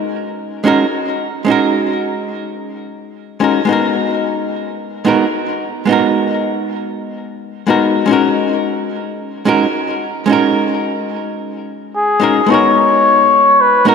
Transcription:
Already playing: G#3 C#4 D#4 F#4 A#4
0.64 G#3 C#4 D#4 F#4 A#4
1.45 G#3 C#4 D#4
1.50 F#4 A#4
3.40 G#3 C#4 D#4 F#4 A#4
3.65 G#3 B3 D#4
3.71 F#4 A#4
5.05 G#3 B3 D#4 F#4 A#4
5.85 G#3 B3 D#4
5.91 F#4 A#4
7.67 G#3 B3 D#4 F#4 A#4
8.06 G#3 C#4 D#4
8.11 F#4 A#4
9.45 G#3 C#4 D#4 F#4 A#4
10.26 G#3 C#4 D#4
10.31 F#4 A#4
11.96 G#4
12.20 G#3 C#4 D#4 F#4 A#4
12.46 G#3 B3 D#4
12.51 F#4 A#4 C#5
13.61 B4
13.85 G#3 B3 D#4 F#4 A#4

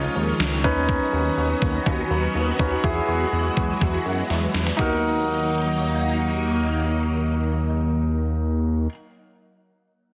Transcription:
Already playing: D#3 F3 G#3 C#4 D#4 F4 C#5
0.16 D#2
0.40 C#2, snare
0.64 D#2 F#3 B3 C#4 D#4 F#4 B4, kick
0.89 kick
1.13 D#2
1.37 D#2
1.62 D#2, kick
1.86 D#2, kick
2.11 D#2
2.35 D#2
2.59 D#2 C#4 D#4 B4, kick
2.84 E2 E3 G#3 E4 F#4 G#4, kick
3.08 E2
3.33 E2
3.57 E2, kick
3.81 E2, kick
4.06 F#2
4.30 E2, snare
4.54 E2, snare
4.67 snare
4.77 D#2 F#3 A#3 D#4 F#4, kick
4.81 A#4

